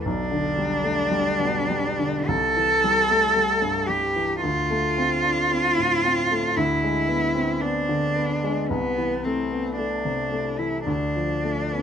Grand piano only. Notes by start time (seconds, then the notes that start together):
0.06 B1
0.32 D3
0.58 G3
0.84 A3
1.11 G3
1.39 B2
1.70 G3
1.99 D3
2.28 C2
2.57 E3
2.84 G3
3.10 A3
3.36 G3
3.62 G2
3.89 G3
4.16 E3
4.44 D2
4.70 A3
4.98 C4
5.25 D4
5.51 C4
5.78 A2
6.05 C4
6.31 A3
6.57 D2
6.83 G#3
7.08 B3
7.35 C4
7.62 B3
7.89 D3
8.16 B3
8.44 G#3
8.70 C2
8.98 E3
9.26 A3
9.52 B3
9.78 A3
10.05 C3
10.32 A3
10.59 E3
10.86 D2
11.16 F3
11.44 A3
11.72 B3